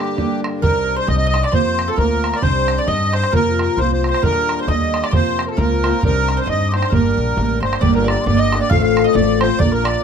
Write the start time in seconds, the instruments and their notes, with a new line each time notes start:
Already playing: harmonium G2 D3, steel-string acoustic guitar G3 A#3 D4 G4, accordion G4
0.17 steel-string acoustic guitar G3 A#3 D4 G4, bodhran
0.44 bodhran
0.62 upright bass C2, steel-string acoustic guitar C3 G3 C4 D4 D#4, mandolin A#4, accordion A#4, tin whistle A#5, bodhran
0.96 mandolin C5, accordion C5, tin whistle C6
1.07 upright bass C2, steel-string acoustic guitar G3 C4 D4 D#4, mandolin D#5, accordion D#5, tin whistle D#6, bodhran
1.18 accordion D#5
1.22 bodhran
1.26 mandolin D#5, accordion D#5, tin whistle D#6
1.34 steel-string acoustic guitar C4 D4 D#4, bodhran
1.43 mandolin D5, accordion D5, tin whistle D6, bodhran
1.52 steel-string acoustic guitar F2 C3 F3 A#3 C4 F4, upright bass F2, mandolin C5, accordion C5, tin whistle C6, bodhran
1.79 bodhran
1.88 mandolin A4, accordion A4
1.96 upright bass D2, steel-string acoustic guitar F3 A#3 C4 F4, mandolin A#4, accordion A#4, tin whistle A#5, bodhran
2.12 bodhran
2.24 bodhran
2.34 accordion D5, bodhran
2.42 upright bass C2, steel-string acoustic guitar C3 D#3 G3 C4 D4, accordion C5, mandolin C5, tin whistle C6, bodhran
2.68 bodhran
2.78 mandolin D5, accordion D5
2.87 upright bass G2, steel-string acoustic guitar D#3 G3 C4 D4, accordion D#5, mandolin D#5, tin whistle D#6, bodhran
3.01 bodhran
3.12 mandolin C5, accordion C5, tin whistle C6, bodhran
3.24 bodhran
3.32 steel-string acoustic guitar F2 C3 F3 A#3 C4 F4, upright bass F2, mandolin A#4, accordion A#4, tin whistle A#5, bodhran
3.58 mandolin A#4, accordion A#4, tin whistle A#5, bodhran
3.77 upright bass C2, steel-string acoustic guitar F3 A#3 C4 F4, mandolin C5, accordion C5, tin whistle C6, bodhran
3.91 accordion C5, bodhran
4.04 tin whistle C6, bodhran
4.09 mandolin C5, accordion C5
4.14 bodhran
4.22 upright bass D#2, steel-string acoustic guitar D#2 A#2 D3 G3 A#3 D4, mandolin A#4, accordion A#4, tin whistle A#5, bodhran
4.32 mandolin A#4
4.42 mandolin A#4
4.49 bodhran
4.58 mandolin C5, accordion C5, tin whistle C6
4.68 upright bass D#2, steel-string acoustic guitar D3 G3 A#3, mandolin D#5, accordion D#5, tin whistle D#6, bodhran
4.81 bodhran
4.94 bodhran
5.02 mandolin D5, accordion D5, tin whistle D6, bodhran
5.11 steel-string acoustic guitar F2 C3 F3 A#3 C4 F4, upright bass F2, mandolin C5, accordion C5, tin whistle C6, bodhran
5.39 bodhran
5.47 accordion A4 A#4, tin whistle A5
5.57 upright bass C#2, steel-string acoustic guitar F3 A#3 C4 F4, mandolin A#4, accordion A#4, tin whistle A#5, bodhran
5.72 bodhran
5.83 steel-string acoustic guitar F3 A#3 C4 F4, mandolin C5, bodhran
6.01 upright bass C2, steel-string acoustic guitar C3 G3 C4 D#4, mandolin A#4, tin whistle A#5, bodhran
6.05 steel-string acoustic guitar D4, accordion A#4
6.28 bodhran
6.37 mandolin C5, accordion C5, tin whistle C6
6.46 upright bass G2, steel-string acoustic guitar G3 C4 D4 D#4, mandolin D#5, tin whistle D#6, bodhran
6.50 accordion D#5
6.61 bodhran
6.68 mandolin C5, tin whistle D6
6.74 steel-string acoustic guitar C4 D4 D#4, accordion C5, tin whistle C6, bodhran
6.83 bodhran
6.90 upright bass G1, steel-string acoustic guitar G3 A#3 D4 G4, mandolin A#4, accordion A#4, bodhran
6.94 tin whistle A#5
7.18 upright bass A#1
7.36 upright bass A1, steel-string acoustic guitar G3 A#3 D4 G4, bodhran
7.50 bodhran
7.60 upright bass G1, mandolin C5, accordion C5, tin whistle C6, bodhran
7.73 bodhran
7.81 upright bass G1, steel-string acoustic guitar G3 A#3 D4 G4, mandolin D5, accordion D5, tin whistle D6, bodhran
7.94 mandolin A#4, accordion A#4, tin whistle A#5
8.04 mandolin D5
8.08 accordion D5, bodhran
8.21 mandolin D5, tin whistle C6
8.26 upright bass G1, steel-string acoustic guitar G3 A#3 D4 G4, accordion D5, tin whistle D6, bodhran
8.37 mandolin D#5, accordion D#5
8.52 steel-string acoustic guitar A#3 D4 G4, bodhran
8.61 mandolin D5, accordion D5, tin whistle D6
8.70 upright bass A1, steel-string acoustic guitar A2 A3 C4 F4 A4, mandolin F5, accordion F5, tin whistle F6, bodhran
8.82 mandolin F5, accordion F5, tin whistle F6
8.97 bodhran
9.04 mandolin D#5, accordion D#5, tin whistle D#6
9.13 upright bass A1, steel-string acoustic guitar A3 C4 F4, mandolin D5, accordion D5, tin whistle D6, bodhran
9.17 steel-string acoustic guitar A4
9.40 steel-string acoustic guitar C4 F4 A4, mandolin C5, accordion C5, tin whistle C6, bodhran
9.59 upright bass A#1, steel-string acoustic guitar A#3 D4 F4 A#4, mandolin D5, accordion D5, tin whistle D6, bodhran
9.71 mandolin A#4, accordion A#4, tin whistle A#5
9.84 accordion D5, mandolin D5, tin whistle D6, bodhran